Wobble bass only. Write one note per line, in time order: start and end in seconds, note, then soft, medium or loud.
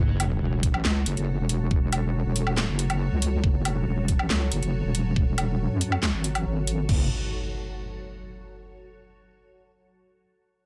0.00 0.40 F#1 medium
0.42 0.72 E1 loud
0.74 0.83 A1 medium
0.85 1.05 C#2 medium
1.06 1.15 F#1 loud
1.17 1.37 F#1 medium
1.39 2.23 E1 loud
2.25 2.67 E1 medium
2.68 3.10 F#1 loud
3.11 3.42 C#2 loud
3.44 3.85 F#1 loud
3.87 4.18 E1 loud
4.19 4.28 A1 loud
4.30 4.50 C#2 loud
4.52 4.61 F#1 loud
4.63 4.82 F#1 loud
4.84 5.69 E1 medium
5.71 6.12 F#2 loud
6.14 6.44 G#1 loud
6.46 6.87 G#1 loud
6.89 7.09 F#1 medium